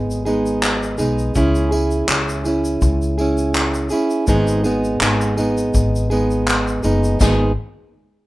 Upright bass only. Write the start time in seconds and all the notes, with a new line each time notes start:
Already playing: G#1
0.99 B1
1.35 C#2
2.08 C#2
2.82 C#2
4.28 G#1
5.01 G#1
5.74 G#1
6.84 F#1
7.21 G#1